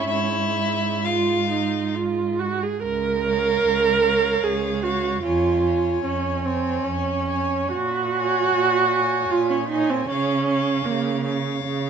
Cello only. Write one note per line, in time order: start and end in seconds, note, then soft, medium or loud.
0.10 2.58 G#2 medium
2.82 3.55 C#2 medium
3.63 4.34 C#2 medium
4.43 5.14 C#2 medium
5.23 5.94 F2 medium
6.04 6.75 F2 soft
6.84 7.61 F2 soft
7.71 8.43 A#2 medium
8.52 9.21 A#2 medium
9.30 9.99 A#2 soft
10.09 10.77 C#3 medium
10.86 11.54 C#3 medium
11.65 11.90 C#3 medium